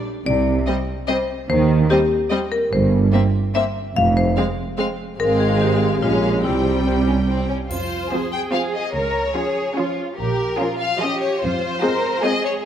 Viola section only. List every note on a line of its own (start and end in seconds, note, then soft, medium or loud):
0.67 0.75 G3 medium
1.08 1.16 G3 soft
1.91 1.99 G3 medium
2.31 2.39 G3 medium
3.13 3.21 A#3 medium
3.55 3.63 A#3 medium
4.37 4.45 G#3 medium
4.78 4.86 G#3 soft
5.19 5.98 G#3 medium
6.03 6.44 G#3 soft
6.44 7.51 G3 soft
8.11 8.43 F3 soft
8.11 8.43 C4 soft
8.52 8.84 F3 soft
8.52 8.84 C4 soft
9.35 9.66 F3 soft
9.35 9.66 C#4 soft
9.76 10.08 F3 soft
9.76 10.08 C#4 soft
10.59 10.90 F3 soft
10.59 10.90 C#4 soft
11.01 11.32 F3 soft
11.01 11.32 C#4 soft
11.83 12.14 G#3 medium
11.83 12.14 C4 soft
12.24 12.54 G#3 soft
12.24 12.54 C4 medium